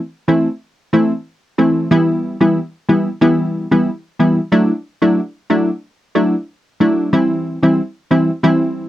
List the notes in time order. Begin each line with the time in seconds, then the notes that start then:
0.28 E3 A3 C4 E4
0.93 E3 A3 C4 E4
1.58 E3 A3 C4 E4
1.91 E3 G3 B3 E4
2.41 E3 G3 B3 E4
2.89 E3 G3 B3 E4
3.21 E3 G3 B3 E4
3.71 E3 G3 B3 E4
4.19 E3 G3 B3 E4
4.52 F#3 A3 D4 E4
5.02 F#3 A3 D4 E4
5.50 F#3 A3 D4 E4
6.15 F#3 A3 D4 E4
6.80 F#3 A3 D4 E4
7.13 E3 G3 C4 E4
7.63 E3 G3 C4 E4
8.11 E3 G3 C4 E4
8.43 E3 G3 C4 E4